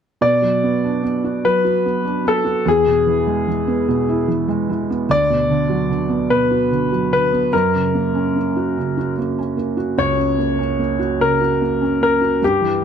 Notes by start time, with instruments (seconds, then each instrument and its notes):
0.21 felt piano B2, grand piano D5
0.42 felt piano F#3
0.63 felt piano B3
0.84 felt piano D4
1.03 felt piano B3
1.24 felt piano F#4
1.45 felt piano F#3, grand piano B4
1.64 felt piano F#4
1.85 felt piano B3
2.05 felt piano D4
2.25 felt piano B3, grand piano A4
2.44 felt piano F#4
2.66 felt piano E2, grand piano G#4
2.86 felt piano B2
3.07 felt piano E3
3.27 felt piano G#3
3.47 felt piano E3
3.67 felt piano B3
3.88 felt piano B2
4.09 felt piano E4
4.28 felt piano E3
4.48 felt piano G#3
4.69 felt piano E3
4.90 felt piano B3
5.09 felt piano D2, grand piano D5
5.30 felt piano B2
5.49 felt piano D3
5.69 felt piano F#3
5.89 felt piano D3
6.09 felt piano B3
6.30 felt piano B2, grand piano B4
6.51 felt piano F#4
6.71 felt piano D3
6.92 felt piano F#3
7.13 felt piano D3, grand piano B4
7.33 felt piano B3
7.53 felt piano F#2, grand piano A#4
7.74 felt piano C#3
7.95 felt piano A#3
8.15 felt piano C#4
8.36 felt piano A#3
8.57 felt piano F#4
8.78 felt piano C#3
8.97 felt piano F#4
9.18 felt piano A#3
9.39 felt piano C#4
9.57 felt piano A#3
9.77 felt piano F#4
9.98 felt piano C#2, grand piano C#5
10.18 felt piano C#3
10.38 felt piano A#3
10.59 felt piano C#4
10.79 felt piano A#3
10.99 felt piano F#4
11.20 felt piano C#3, grand piano A#4
11.41 felt piano F#4
11.62 felt piano A#3
11.81 felt piano C#4
12.01 felt piano A#3, grand piano A#4
12.21 felt piano F#4
12.42 felt piano G2, grand piano G4
12.62 felt piano E3